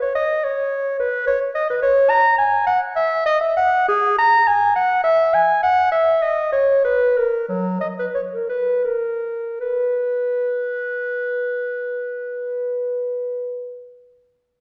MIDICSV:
0, 0, Header, 1, 2, 480
1, 0, Start_track
1, 0, Key_signature, 5, "major"
1, 0, Tempo, 567108
1, 357, Time_signature, 3, 2, 24, 8
1, 2757, Tempo, 591716
1, 5157, Tempo, 624350
1, 6117, Tempo, 683371
1, 7077, Tempo, 761421
1, 10717, End_track
2, 0, Start_track
2, 0, Title_t, "Clarinet"
2, 0, Program_c, 0, 71
2, 14, Note_on_c, 0, 73, 74
2, 123, Note_off_c, 0, 73, 0
2, 128, Note_on_c, 0, 75, 79
2, 371, Note_on_c, 0, 73, 78
2, 384, Note_off_c, 0, 75, 0
2, 837, Note_off_c, 0, 73, 0
2, 842, Note_on_c, 0, 71, 71
2, 1070, Note_off_c, 0, 71, 0
2, 1075, Note_on_c, 0, 73, 82
2, 1182, Note_off_c, 0, 73, 0
2, 1312, Note_on_c, 0, 75, 85
2, 1428, Note_off_c, 0, 75, 0
2, 1436, Note_on_c, 0, 71, 67
2, 1537, Note_off_c, 0, 71, 0
2, 1542, Note_on_c, 0, 73, 91
2, 1775, Note_on_c, 0, 82, 99
2, 1788, Note_off_c, 0, 73, 0
2, 2010, Note_off_c, 0, 82, 0
2, 2015, Note_on_c, 0, 80, 78
2, 2254, Note_off_c, 0, 80, 0
2, 2259, Note_on_c, 0, 78, 80
2, 2371, Note_off_c, 0, 78, 0
2, 2505, Note_on_c, 0, 76, 89
2, 2748, Note_off_c, 0, 76, 0
2, 2758, Note_on_c, 0, 75, 100
2, 2873, Note_off_c, 0, 75, 0
2, 2880, Note_on_c, 0, 76, 74
2, 2996, Note_off_c, 0, 76, 0
2, 3008, Note_on_c, 0, 78, 91
2, 3247, Note_off_c, 0, 78, 0
2, 3263, Note_on_c, 0, 68, 100
2, 3495, Note_off_c, 0, 68, 0
2, 3508, Note_on_c, 0, 82, 93
2, 3745, Note_on_c, 0, 80, 85
2, 3757, Note_off_c, 0, 82, 0
2, 3970, Note_off_c, 0, 80, 0
2, 3975, Note_on_c, 0, 78, 89
2, 4199, Note_off_c, 0, 78, 0
2, 4202, Note_on_c, 0, 76, 96
2, 4447, Note_on_c, 0, 80, 84
2, 4459, Note_off_c, 0, 76, 0
2, 4675, Note_off_c, 0, 80, 0
2, 4680, Note_on_c, 0, 78, 92
2, 4910, Note_off_c, 0, 78, 0
2, 4914, Note_on_c, 0, 76, 80
2, 5158, Note_on_c, 0, 75, 73
2, 5170, Note_off_c, 0, 76, 0
2, 5387, Note_off_c, 0, 75, 0
2, 5392, Note_on_c, 0, 73, 82
2, 5624, Note_off_c, 0, 73, 0
2, 5641, Note_on_c, 0, 71, 82
2, 5891, Note_on_c, 0, 70, 69
2, 5902, Note_off_c, 0, 71, 0
2, 6125, Note_off_c, 0, 70, 0
2, 6129, Note_on_c, 0, 54, 79
2, 6350, Note_off_c, 0, 54, 0
2, 6357, Note_on_c, 0, 75, 62
2, 6408, Note_off_c, 0, 75, 0
2, 6485, Note_on_c, 0, 71, 58
2, 6535, Note_off_c, 0, 71, 0
2, 6593, Note_on_c, 0, 73, 59
2, 6646, Note_off_c, 0, 73, 0
2, 6721, Note_on_c, 0, 70, 50
2, 6832, Note_off_c, 0, 70, 0
2, 6839, Note_on_c, 0, 71, 56
2, 7078, Note_off_c, 0, 71, 0
2, 7084, Note_on_c, 0, 70, 57
2, 7553, Note_off_c, 0, 70, 0
2, 7564, Note_on_c, 0, 71, 65
2, 10194, Note_off_c, 0, 71, 0
2, 10717, End_track
0, 0, End_of_file